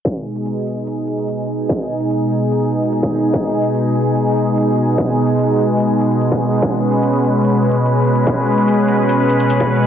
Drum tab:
HH |x--xx-x-x-xxx---|x--xx-x-x-xxx---|x--xx-x-x-xxx---|x--xx-x-x-xxx---|
BD |o---------------|o------------o--|o---------------|o------------o--|

HH |x--xx-x-x-xxx---|x--xx-x-x-xxx---|
BD |o---------------|o------------o--|